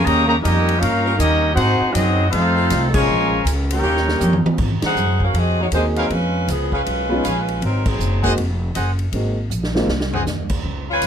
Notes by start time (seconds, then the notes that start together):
Already playing: G3 C#4 D#4 A#4
0.03 D#2 C#3 G3 A#3 G4 C#5 D#5 A#5, ride
0.27 C#3 G3 A#3 G4 C#5 D#5 A#5
0.41 F2 G3 A#3 C#4 D#4 G4 A#4 D#5, hi-hat pedal, ride
0.69 ride
0.78 A#3 C#4 D#4 F4 A#4 C#5 F5
0.82 G2, ride
1.05 G3 C#4 D#4 A#4
1.16 D#2 G3 A#3 C#4 D#4 G4 A#4 D#5, hi-hat pedal, ride
1.55 G#2 C4 D#4 F#4 G#4 C5 F#5, ride
1.81 muted upright bass stroke
1.91 F#2 F#3 C4 D#4 F#4 G#4 D#5, hi-hat pedal, ride
2.30 F2 A3 C4 D#4 F4 A4 C5 F5, ride
2.56 F3 C4 D#4 A4
2.70 C2, snare, hi-hat pedal, ride
2.91 C#3 F3 G#3 A#3 C#4 F4 G#4 A#4 C#5 G#5, kick, crash
3.08 A#1
3.45 C#2, hi-hat pedal, ride
3.70 A#3 C#4 D#4 G4 A#4 C#5 G5, ride
3.82 D#2 D#3 A#3 C#4 G4
3.97 snare
4.08 snare
4.21 F2 D#3 A#3 C#4 G4, hi-hat pedal
4.33 high tom
4.44 muted upright bass stroke, high tom
4.58 G#2, kick, crash
4.82 D#4 C5 F#5, muted upright bass stroke, snare, ride
4.86 G#4
4.95 F#2, hi-hat pedal
5.20 C#4 A#4 F5, kick
5.24 F#4
5.33 F2 F#4 D#5, ride
5.38 C4 G#4
5.60 A#3 D#4 F#4 C#5
5.72 D#2 G#3 A#3 C4 D#4 F#4 G#4 C5, hi-hat pedal, ride
5.96 F#3 C4 D#4 G#4 A#4 B4 C#5 F5, ride
6.10 F2 G#3 C#4 F4 B4, ride
6.48 C#2 F3 B3 C#4 G#4, hi-hat pedal, ride
6.72 G#3 C#4 F4 G#4 B4 C#5 F5, kick
6.86 B1, ride
7.09 G#3 B3 C#4 D#4 F4
7.24 A#1 G#4 B4 C#5 F5, hi-hat pedal, ride
7.48 ride
7.61 G#1 F#3 C4 D#4 A#4, ride
7.86 F#3 C4 D#4 G#4, kick, crash
7.99 F#1, hi-hat pedal
8.23 G#3 A#3 C4 D#4 F#4 G#4 C5 D#5 F#5, kick, ride
8.38 F1, ride
8.75 F#1 G#4 C5 D#5 F#5, hi-hat pedal, ride
8.99 ride
9.12 G#1 G#3 A#3 C4 D#4 F#4, ride
9.50 A#1, hi-hat pedal
9.63 snare
9.75 G#3 A#3 C4 D#4 F4, snare
9.87 C2, snare
10.00 snare
10.13 G#4 C5 D#5 F#5, floor tom
10.25 D#2, snare, hi-hat pedal
10.49 kick, crash
10.63 C#2
10.91 F4 B4 C#5 G#5
11.02 F#2, hi-hat pedal, ride